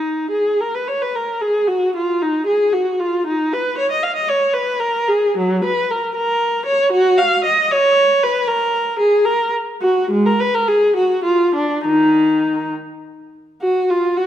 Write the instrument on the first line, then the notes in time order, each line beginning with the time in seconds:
viola
Already playing: D#4
0.31 G#4
0.61 A#4
0.75 B4
0.88 C#5
1.02 B4
1.15 A#4
1.41 G#4
1.67 F#4
1.96 F4
2.22 D#4
2.46 G#4
2.73 F#4
2.99 F4
3.27 D#4
3.53 B4
3.78 C#5
3.91 D#5
4.03 F5
4.16 D#5
4.29 C#5
4.54 B4
4.80 A#4
5.08 G#4
5.37 F#3
5.64 B4
5.90 A#4
6.15 A#4
6.66 C#5
6.92 F#4
7.18 F5
7.44 D#5
7.71 C#5
8.23 B4
8.47 A#4
8.99 G#4
9.25 A#4
9.82 F#4
10.11 G#3
10.26 A#4
10.40 B4
10.54 A#4
10.68 G#4
10.96 F#4
11.24 F4
11.55 D4
11.85 D#3 D#4
13.62 F#4
13.90 F4
14.17 F#4